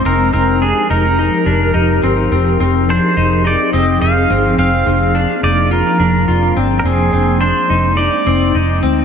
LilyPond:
<<
  \new Staff \with { instrumentName = "Pedal steel guitar" } { \time 4/4 \key f \dorian \tempo 4 = 106 bes'8 bes'8 aes'8 bes'2 r8 | r4 c''4 d''8 ees''8 f''4 | f''4. d''8 bes'4. r16. bes'32 | aes'4 c''4 d''4. r8 | }
  \new Staff \with { instrumentName = "Ambient pad" } { \time 4/4 \key f \dorian << { <ees' g' bes'>1 | <c' ees' aes'>1 | <f bes d'>1 | <aes c' ees'>1 | } \\ { f1~ | f1 | r1 | r1 | } >> }
  \new Staff \with { instrumentName = "Clean electric guitar" } { \time 4/4 \key f \dorian c'8 c'8 d'8 ees'8 ees'8 d'8 ees'8 c'8 | c'8 c'8 d'8 ees'8 ees'8 c'8 ees'8 c'8 | c'8 c'8 d'8 ees'8 f'8 d'8 f'8 c'8 | c'8 c'8 d'8 ees'8 ees'8 c'8 ees'8 c'8 | }
  \new Staff \with { instrumentName = "Fingered electric bass" } { \clef bass \time 4/4 \key f \dorian f,,8 f,,8. r16 f,,8. r16 f,,8 f,,8 g,,8 | f,,8 f,,8. r16 f,,8. r16 f,,8 f,,8 g,,8 | f,,8 f,,8. r16 f,,8. r16 f,,8 f,,8 g,,8 | f,,8 f,,8. r16 f,,8. r16 f,,8 f,,8 d,8 | }
>>